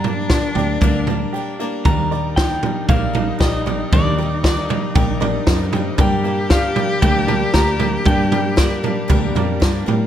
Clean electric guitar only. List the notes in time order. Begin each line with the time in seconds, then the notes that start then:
Already playing: A#5
1.86 A#5
2.36 G5
2.89 F5
3.41 D#5
3.93 D5
4.46 D5
6.01 G5
6.51 F5
7.02 G5
7.54 A#5
8.07 G5
8.58 D5